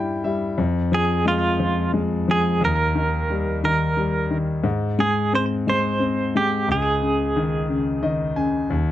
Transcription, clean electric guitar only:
0.94 1.27 G#4 medium
1.28 1.91 F4 medium
2.31 2.64 G#4 medium
2.65 3.61 A#4 medium
3.65 4.37 A#4 medium
5.00 5.35 G#4 medium
5.35 5.44 C5 medium
5.70 6.36 C5 medium
6.37 6.71 G4 medium
6.72 8.02 G#4 medium

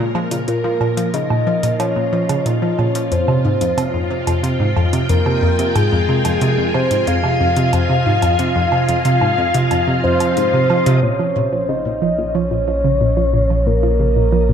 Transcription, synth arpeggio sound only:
0.15 0.21 F3 medium
0.31 0.42 A#2 medium
0.48 0.54 A#2 medium
0.64 0.80 F3 medium
0.81 0.87 A#2 medium
0.97 1.08 F3 medium
1.14 1.20 C#3 medium
1.30 1.41 A#2 medium
1.47 1.58 F3 medium
1.63 1.70 A#2 medium
1.80 1.95 F3 medium
1.96 2.03 A#2 medium
2.13 2.24 F3 medium
2.29 2.36 C#3 medium
2.46 2.57 A#2 medium
2.62 2.73 F3 medium
2.79 2.85 A#2 medium
2.95 3.11 F3 medium
3.12 3.18 F2 medium
3.28 3.39 C3 medium
3.45 3.51 G#2 medium
3.61 3.72 F2 medium
3.77 3.88 C3 medium
3.94 4.00 F2 medium
4.11 4.26 C3 medium
4.27 4.34 F2 medium
4.43 4.54 C3 medium
4.60 4.66 G#2 medium
4.76 4.87 F2 medium
4.93 5.04 C3 medium
5.10 5.16 F2 medium
5.26 5.42 C3 medium
5.42 5.49 F2 medium
5.59 5.70 C3 medium
5.76 5.82 G#2 medium
5.92 6.03 F2 medium
6.09 6.19 C3 medium
6.25 6.32 F2 medium
6.42 6.57 C3 medium
6.58 6.64 F2 medium
6.75 6.85 C3 medium
6.91 6.97 G#2 medium
7.07 7.18 F2 medium
7.24 7.35 C3 medium
7.40 7.47 F2 medium
7.57 7.72 C3 medium
7.73 7.80 F2 medium
7.90 8.00 C3 medium
8.06 8.13 G#2 medium
8.23 8.34 F2 medium
8.39 8.50 C3 medium
8.56 8.62 F2 medium
8.72 8.88 C3 medium
8.89 8.95 F2 medium
9.05 9.16 C3 medium
9.22 9.28 G#2 medium
9.38 9.49 F2 medium
9.55 9.65 C3 medium
9.71 9.78 F2 medium
9.88 10.03 C3 medium
10.04 10.15 F2 medium
10.21 10.31 F3 medium
10.37 10.48 G#2 medium
10.54 10.64 C3 medium
10.70 10.81 F3 medium
10.87 10.97 C3 loud
11.03 11.09 A#2 medium
11.19 11.35 F3 medium
11.36 11.42 A#2 medium
11.53 11.63 F3 medium
11.69 11.75 C#3 medium
11.85 11.96 A#2 medium
12.02 12.13 F3 medium
12.18 12.25 A#2 medium
12.35 12.50 F3 medium
12.51 12.58 A#2 medium
12.68 12.79 F3 medium
12.84 12.91 C#3 medium
13.01 13.12 A#2 medium
13.17 13.28 F3 medium
13.33 13.40 A#2 medium
13.50 13.66 F3 medium
13.66 13.73 A#2 medium
13.83 13.94 F3 medium
14.00 14.06 C#3 medium
14.16 14.27 A#2 medium
14.33 14.43 F3 medium
14.49 14.53 A#2 medium

